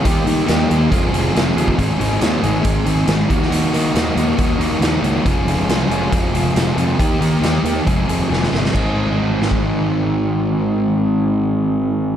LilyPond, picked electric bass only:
\new Staff \with { instrumentName = "Picked electric bass" } { \clef bass \time 4/4 \key aes \major \tempo 4 = 138 ees,8 ees8 ees,8 ees,8 f,,8 f,,8 f,,8 ees,8 | aes,,8 aes,,8 ees,8 aes,,8 aes,,8 aes,,8 aes,,8 ees,8 | ees,8 ees8 ees,8 ees,8 ees,8 ees,8 ees,8 des,8 | f,,8 f,,8 c,8 f,,8 f,,8 f,,8 f,,8 f,8 |
ees,8 ees8 ees,8 ees,8 f,,8 f,,8 f,,8 g,,8 | aes,,1~ | aes,,1 | }